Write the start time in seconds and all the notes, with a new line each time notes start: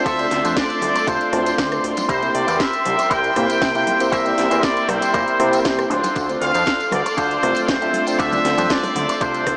Already playing: A3 C4 D4 F4 A4 C5 D5 C6
0.05 D2 D4 F4 A4 C5 E5, kick, closed hi-hat, tambourine
0.18 A3 C4 D4 F4 D5, closed hi-hat, tambourine
0.31 D2, snare, open hi-hat
0.44 F2 D4 F4 A4 C5, closed hi-hat, tambourine
0.56 D5, kick, snare, closed hi-hat, tambourine
0.70 closed hi-hat, tambourine
0.82 D2, open hi-hat, muted conga, high conga
0.95 muted clean electric guitar stroke, closed hi-hat, tambourine
1.07 C2 D4 F4 A4 C5, kick, closed hi-hat, tambourine
1.21 closed hi-hat, tambourine
1.32 D1 A3 C4 D4 F4 C5 A5, cross-stick, open hi-hat, low conga
1.46 closed hi-hat, tambourine
1.58 D2 D5, kick, snare, closed hi-hat, tambourine
1.72 cross-stick, closed hi-hat, tambourine
1.84 D1, open hi-hat
1.97 closed hi-hat, tambourine, muted conga
2.09 C2 E4 G4 A#4 C5 E5 G5, kick, closed hi-hat, tambourine
2.22 A#3 C4 E4 G4 C5, closed hi-hat, tambourine
2.35 C2 D5, open hi-hat
2.47 E2 E4 G4 A#4 C5, closed hi-hat, tambourine
2.60 E5, kick, snare, closed hi-hat, tambourine
2.73 closed hi-hat, tambourine
2.85 C2, open hi-hat, muted conga, high conga
2.98 muted clean electric guitar stroke, closed hi-hat, tambourine
3.10 C2 E4 G4 A#4 C5 G5, kick, closed hi-hat, tambourine
3.24 closed hi-hat, tambourine
3.36 A#2 A#3 C4 E4 G4 C5, cross-stick, open hi-hat, low conga
3.50 C3, closed hi-hat, tambourine
3.61 C3 G5, kick, snare, closed hi-hat, tambourine
3.75 C3 A#3 C4 E4 G4 E5, closed hi-hat, tambourine
3.87 open hi-hat, muted conga
4.00 A#3 C4 E4 G4 C5, closed hi-hat, tambourine
4.11 C2 E4 G4 A#4 C5 E5, kick, closed hi-hat, tambourine
4.25 A#3 C4 E4 G4 D5, closed hi-hat, tambourine
4.38 C2, snare, open hi-hat
4.50 E2 E4 G4 A#4 C5, closed hi-hat, tambourine
4.63 D5, kick, snare, closed hi-hat, tambourine
4.77 closed hi-hat, tambourine
4.88 C2 C5, cross-stick, open hi-hat, muted conga, high conga
5.01 muted clean electric guitar stroke, closed hi-hat, tambourine
5.14 A#2 E4 G4 A#4 C5, kick, closed hi-hat, tambourine
5.27 closed hi-hat, tambourine
5.39 C3 A#3 C4 E4 G4 C5, cross-stick, open hi-hat, low conga
5.53 closed hi-hat, tambourine
5.65 C2, kick, snare, closed hi-hat, tambourine
5.79 cross-stick, closed hi-hat, tambourine
5.90 D1 D4 F4 A4 C5 D5, open hi-hat
6.03 closed hi-hat, tambourine, muted conga
6.15 D2, kick, closed hi-hat, tambourine
6.29 A3 C4 D4 F4 C5, closed hi-hat, tambourine
6.42 D2 F5, open hi-hat
6.54 F2 D4 F4 A4 C5, closed hi-hat, tambourine
6.66 kick, snare, closed hi-hat, tambourine
6.80 closed hi-hat, tambourine
6.92 D2 D5, cross-stick, open hi-hat, muted conga, high conga
7.05 muted clean electric guitar stroke, closed hi-hat, tambourine
7.17 D2 D4 F4 A4 C5 D5, kick, closed hi-hat, tambourine
7.31 closed hi-hat, tambourine
7.43 C2 A3 C4 D4 F4 C5, cross-stick, open hi-hat, low conga
7.55 D1, closed hi-hat, tambourine
7.62 D5
7.68 D1 C5, kick, snare, closed hi-hat, tambourine
7.81 D1 A3 C4 D4 F4 E5, closed hi-hat, tambourine
7.93 open hi-hat, muted conga
8.07 A3 C4 D4 F4 C5, closed hi-hat, tambourine
8.19 D2 D4 F4 A4 D5 E5, kick, closed hi-hat, tambourine
8.32 A3 C4 D4 F4 D5, closed hi-hat, tambourine, high conga, low conga
8.45 D2, snare, open hi-hat
8.57 F2 D4 F4 A4 C5, closed hi-hat, tambourine, high conga
8.70 D5, kick, snare, closed hi-hat, tambourine
8.83 open hi-hat, tambourine, muted conga
8.95 D2, open hi-hat, muted conga, high conga
9.08 muted clean electric guitar stroke, closed hi-hat, tambourine
9.21 C2 D4 F4 A4 C5, kick, closed hi-hat, tambourine
9.34 closed hi-hat, tambourine
9.47 D2, kick, cross-stick, open hi-hat, low conga